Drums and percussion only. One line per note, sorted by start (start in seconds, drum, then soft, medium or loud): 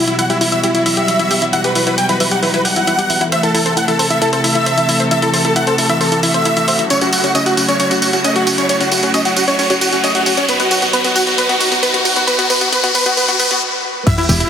0.08 closed hi-hat medium
0.19 closed hi-hat medium
0.30 closed hi-hat medium
0.41 open hi-hat loud
0.52 closed hi-hat medium
0.64 closed hi-hat medium
0.75 closed hi-hat medium
0.86 open hi-hat loud
0.97 closed hi-hat medium
1.08 closed hi-hat medium
1.19 closed hi-hat medium
1.31 open hi-hat loud
1.42 closed hi-hat medium
1.53 closed hi-hat medium
1.64 closed hi-hat medium
1.75 open hi-hat loud
1.87 closed hi-hat soft
1.98 closed hi-hat medium
2.09 closed hi-hat soft
2.20 open hi-hat loud
2.31 closed hi-hat medium
2.43 open hi-hat medium
2.54 closed hi-hat soft
2.65 open hi-hat loud
2.76 closed hi-hat medium
2.87 closed hi-hat medium
2.99 closed hi-hat medium
3.10 open hi-hat loud
3.21 closed hi-hat medium
3.32 closed hi-hat medium
3.43 closed hi-hat medium
3.55 open hi-hat loud
3.66 closed hi-hat soft
3.77 closed hi-hat medium
3.88 closed hi-hat soft
3.99 open hi-hat loud
4.10 closed hi-hat soft
4.22 closed hi-hat medium
4.33 closed hi-hat soft
4.44 open hi-hat loud
4.55 closed hi-hat medium
4.66 closed hi-hat medium
4.78 closed hi-hat soft
4.89 open hi-hat loud
5.00 closed hi-hat soft
5.11 closed hi-hat medium
5.22 closed hi-hat soft
5.34 open hi-hat loud
5.45 closed hi-hat soft
5.56 closed hi-hat medium
5.67 closed hi-hat medium
5.78 open hi-hat loud
5.89 closed hi-hat soft
6.01 open hi-hat medium
6.12 closed hi-hat soft
6.23 open hi-hat loud
6.34 closed hi-hat soft
6.45 closed hi-hat medium
6.57 closed hi-hat soft
6.68 open hi-hat loud
6.79 closed hi-hat medium
6.90 closed hi-hat medium
6.90 tambourine soft
7.01 closed hi-hat soft
7.01 tambourine soft
7.13 open hi-hat loud
7.13 tambourine medium
7.24 closed hi-hat soft
7.24 tambourine soft
7.35 closed hi-hat medium
7.35 tambourine soft
7.46 closed hi-hat medium
7.46 tambourine soft
7.57 open hi-hat loud
7.57 tambourine medium
7.69 closed hi-hat soft
7.69 tambourine soft
7.80 closed hi-hat medium
7.80 tambourine soft
7.91 closed hi-hat soft
7.91 tambourine soft
8.02 open hi-hat loud
8.02 tambourine medium
8.13 closed hi-hat soft
8.13 tambourine soft
8.24 closed hi-hat medium
8.24 tambourine soft
8.36 closed hi-hat soft
8.47 open hi-hat loud
8.47 tambourine medium
8.58 closed hi-hat soft
8.58 tambourine soft
8.69 closed hi-hat medium
8.69 tambourine soft
8.81 closed hi-hat medium
8.81 tambourine soft
8.92 open hi-hat loud
8.92 tambourine medium
9.03 closed hi-hat medium
9.03 tambourine soft
9.14 closed hi-hat medium
9.14 tambourine soft
9.25 closed hi-hat medium
9.25 tambourine soft
9.36 open hi-hat loud
9.36 tambourine medium
9.48 closed hi-hat medium
9.48 tambourine soft
9.59 open hi-hat medium
9.59 tambourine soft
9.70 closed hi-hat medium
9.70 tambourine soft
9.81 open hi-hat loud
9.81 tambourine medium
9.93 closed hi-hat medium
9.93 tambourine soft
10.04 closed hi-hat medium
10.04 tambourine soft
10.15 closed hi-hat medium
10.26 open hi-hat loud
10.26 tambourine medium
10.37 closed hi-hat medium
10.37 tambourine soft
10.49 closed hi-hat medium
10.49 tambourine soft
10.60 closed hi-hat medium
10.60 tambourine soft
10.71 open hi-hat loud
10.71 tambourine medium
10.82 closed hi-hat medium
10.82 tambourine soft
10.93 closed hi-hat medium
10.93 tambourine soft
11.04 closed hi-hat medium
11.04 tambourine soft
11.16 open hi-hat loud
11.16 tambourine medium
11.27 closed hi-hat medium
11.27 tambourine soft
11.38 closed hi-hat medium
11.38 tambourine soft
11.49 closed hi-hat medium
11.49 tambourine soft
11.61 open hi-hat loud
11.61 tambourine medium
11.72 closed hi-hat medium
11.72 tambourine soft
11.83 closed hi-hat medium
11.83 tambourine soft
11.94 closed hi-hat medium
12.05 open hi-hat loud
12.05 tambourine medium
12.16 closed hi-hat medium
12.16 tambourine soft
12.28 closed hi-hat medium
12.28 tambourine soft
12.39 closed hi-hat medium
12.39 tambourine soft
12.50 open hi-hat loud
12.50 tambourine medium
12.61 closed hi-hat medium
12.61 tambourine soft
12.73 closed hi-hat medium
12.73 tambourine soft
12.84 closed hi-hat medium
12.84 tambourine soft
12.95 open hi-hat loud
12.95 tambourine medium
13.06 closed hi-hat medium
13.06 tambourine soft
13.17 open hi-hat medium
13.17 tambourine soft
13.29 closed hi-hat medium
13.29 tambourine soft
13.40 open hi-hat loud
13.40 tambourine medium
13.51 closed hi-hat medium
13.51 tambourine soft
14.07 kick loud
14.07 closed hi-hat medium
14.07 tambourine soft
14.07 crash loud
14.18 closed hi-hat medium
14.18 tambourine soft
14.29 open hi-hat loud
14.29 tambourine medium
14.40 closed hi-hat medium
14.40 tambourine soft